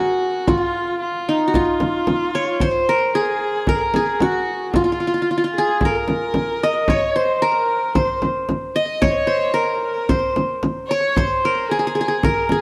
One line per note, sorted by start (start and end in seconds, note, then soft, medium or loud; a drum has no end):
0.00 0.50 F#4 medium
0.00 0.54 F#4 medium
0.00 0.88 G#4 medium
0.00 0.54 A#4 medium
0.47 1.54 F4 medium
0.47 1.00 F4 medium
0.47 frame drum medium
1.00 1.50 F4 medium
1.29 2.73 D#4 medium
1.48 1.61 F#4 medium
1.53 2.63 F4 medium
1.53 2.90 F4 medium
1.53 frame drum medium
1.80 frame drum medium
2.07 frame drum medium
2.35 2.67 C#5 medium
2.60 3.13 C5 medium
2.60 3.67 C5 medium
2.60 frame drum medium
2.89 3.68 A#4 medium
3.14 3.22 G#4 medium
3.14 3.96 G#4 medium
3.21 3.30 A#4 medium
3.29 3.70 G#4 medium
3.67 3.77 A#4 medium
3.67 4.82 A#4 medium
3.67 frame drum medium
3.75 3.82 G#4 medium
3.81 3.96 A#4 medium
3.94 4.21 G#4 medium
3.94 5.17 G#4 medium
3.94 frame drum medium
4.20 4.74 F#4 medium
4.20 4.82 F#4 medium
4.20 frame drum medium
4.74 5.51 F4 medium
4.74 4.84 F4 medium
4.74 frame drum medium
4.84 4.92 F4 medium
4.92 5.00 F4 medium
5.00 5.07 F4 soft
5.07 5.14 F4 medium
5.14 5.22 F4 soft
5.22 5.30 F4 medium
5.31 5.37 F4 soft
5.38 5.44 F4 medium
5.44 6.79 F4 medium
5.55 5.84 G#4 medium
5.55 6.80 G#4 medium
5.81 6.90 A#4 medium
5.81 frame drum medium
5.85 6.98 A#4 medium
6.08 frame drum medium
6.34 frame drum medium
6.63 7.59 D#5 medium
6.88 7.17 C#5 medium
6.88 7.22 C#5 medium
6.88 frame drum medium
7.15 7.45 C5 medium
7.15 7.95 C5 medium
7.42 8.55 A#4 medium
7.42 7.96 A#4 medium
7.95 9.01 C5 medium
7.95 8.21 C5 medium
7.95 frame drum medium
8.22 frame drum medium
8.49 frame drum medium
8.76 9.71 D#5 medium
8.76 9.05 D#5 medium
9.02 9.33 C#5 medium
9.02 9.12 C#5 medium
9.02 frame drum medium
9.10 9.18 C5 medium
9.17 9.57 C#5 medium
9.27 10.09 C5 medium
9.54 10.67 A#4 medium
9.54 9.82 A#4 medium
9.83 10.11 A#4 medium
10.09 10.97 C5 medium
10.09 10.36 C5 medium
10.09 frame drum medium
10.36 frame drum medium
10.63 frame drum medium
10.88 11.18 C#5 medium
10.88 11.23 C#5 medium
11.16 11.70 C5 medium
11.16 12.23 C5 medium
11.16 frame drum medium
11.45 12.24 A#4 medium
11.69 12.25 G#4 medium
11.69 11.79 G#4 medium
11.79 11.87 G#4 medium
11.87 11.95 G#4 medium
11.95 12.00 G#4 medium
12.01 12.08 G#4 medium
12.08 12.51 G#4 medium
12.23 12.52 A#4 medium
12.23 12.61 A#4 medium
12.23 frame drum medium
12.49 12.61 G#4 medium
12.49 frame drum medium